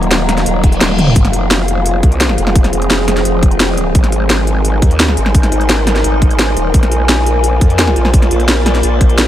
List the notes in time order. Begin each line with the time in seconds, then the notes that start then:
Already playing: D#1 D#3 F#3 A#3 F4 F#4 A#4 D#5 A#5
0.03 closed hi-hat
0.11 snare, closed hi-hat
0.29 snare, closed hi-hat
0.37 snare, closed hi-hat
0.46 D#1, closed hi-hat, reverse cymbal
0.64 kick, closed hi-hat
0.72 closed hi-hat
0.81 D#1, snare, closed hi-hat, high tom
0.90 high tom
0.99 closed hi-hat, mid tom
1.07 mid tom
1.16 F1 F3 C4 F4 G#4, kick, closed hi-hat
1.25 snare, closed hi-hat
1.33 closed hi-hat
1.47 G#4 C5, snare, closed hi-hat
1.68 closed hi-hat
1.86 closed hi-hat
2.03 C2, kick, closed hi-hat
2.12 closed hi-hat
2.20 G#5, snare, closed hi-hat
2.29 snare
2.38 F1, closed hi-hat
2.47 snare
2.55 kick, closed hi-hat
2.64 snare, closed hi-hat
2.73 F1, closed hi-hat
2.82 closed hi-hat
2.90 snare, closed hi-hat
3.08 snare, closed hi-hat
3.17 snare, closed hi-hat
3.25 F1, closed hi-hat
3.43 kick, closed hi-hat
3.51 closed hi-hat
3.60 snare, closed hi-hat
3.77 closed hi-hat
3.95 G#1 G#3 D#4 A#4 C5, kick, closed hi-hat
4.04 snare, closed hi-hat
4.12 A#4, closed hi-hat
4.30 snare, closed hi-hat
4.47 closed hi-hat
4.65 closed hi-hat
4.82 D#2, kick, closed hi-hat
4.91 closed hi-hat
5.00 snare, closed hi-hat
5.08 snare
5.17 G#1, closed hi-hat
5.26 snare
5.35 kick, closed hi-hat
5.43 snare, closed hi-hat
5.52 G#1, closed hi-hat
5.61 closed hi-hat
5.69 snare, closed hi-hat
5.87 snare, closed hi-hat
5.96 snare, closed hi-hat
6.04 G#1, closed hi-hat
6.22 kick, closed hi-hat
6.31 closed hi-hat
6.39 snare, closed hi-hat
6.57 D#1, closed hi-hat
6.74 A#1 A#3 F4 C5 D5, kick, closed hi-hat
6.83 snare, closed hi-hat
6.92 closed hi-hat
7.09 snare, closed hi-hat
7.26 closed hi-hat
7.44 closed hi-hat
7.52 D5
7.61 F2, kick, closed hi-hat
7.70 closed hi-hat
7.79 snare, closed hi-hat
7.87 snare
7.96 A#1, closed hi-hat
8.05 snare
8.14 kick, closed hi-hat
8.22 snare, closed hi-hat
8.31 A#1, closed hi-hat
8.40 closed hi-hat
8.48 snare, closed hi-hat
8.66 snare, closed hi-hat
8.75 snare, closed hi-hat
8.83 A#1, closed hi-hat
9.01 kick, closed hi-hat
9.10 closed hi-hat
9.18 snare, closed hi-hat